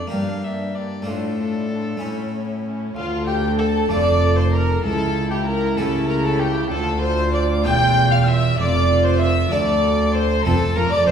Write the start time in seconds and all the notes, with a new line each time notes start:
Already playing: A3 D4 A4 D5
0.07 A#3 D4 G4
0.12 G2 A#3 D4 G4 F5
0.44 A#3 D4 G4 E5
0.75 A#3 D4 G4 D5
1.02 A3 D4 F4
1.07 A2 A3 D4 F4 A4
1.38 A3 D4 F4
1.69 A3 D4 F4
1.97 A3 C#4 E4
2.02 A2 A3 C#4 E4
2.33 A3 C#4 E4
2.64 A3 C#4 E4
2.96 D2 F4 A4 F5
3.27 G4 G5
3.58 A4 A5
3.89 F1 F2 A3 D4 F4 D5 D6
4.36 C5 C6
4.52 A#4 A#5
4.84 C#2 E4 A4 A5
5.31 G4 G5
5.46 A#4 A#5
5.77 C#2 C#3 A3 E4 G4 A4 A5
6.08 A#4 A#5
6.24 A4 A5
6.39 G4 G5
6.70 D2 F4 A4 A5
7.02 C5 C6
7.33 D5 D6
7.65 E1 E2 A3 D4 F4 G5 G6
8.12 F5 F6
8.27 E5 E6
8.58 F1 F2 F4 D5 D6
9.05 C5 C6
9.20 E5 E6
9.51 D2 A3 D4 A4 D5 D6
10.14 C5 C6
10.45 F1 F2 A3 C4 F4 A4 A5
10.76 F1 F2 F4 A#4 A#5
10.91 D5 D6
11.07 F1 F2 F4 C5 C6